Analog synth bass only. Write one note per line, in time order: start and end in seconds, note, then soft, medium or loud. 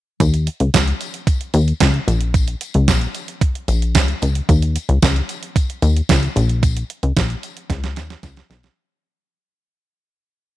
0.20 0.49 D#2 loud
0.60 0.70 C#2 medium
0.74 0.93 C#2 loud
1.54 1.73 D#2 loud
1.81 2.00 C#2 loud
2.08 2.55 A#1 loud
2.75 2.90 C#2 medium
2.88 3.07 A#1 loud
3.68 3.96 A#1 loud
3.95 4.14 C#2 medium
4.22 4.41 C#2 medium
4.49 4.77 D#2 loud
4.89 4.98 C#2 medium
5.03 5.22 C#2 loud
5.82 6.02 D#2 loud
6.09 6.28 C#2 loud
6.36 6.84 A#1 loud
7.03 7.13 C#2 medium
7.17 7.36 A#1 loud
7.70 7.98 C#2 loud
7.97 8.16 D#2 loud
8.23 8.42 C#2 medium
8.50 8.69 B1 medium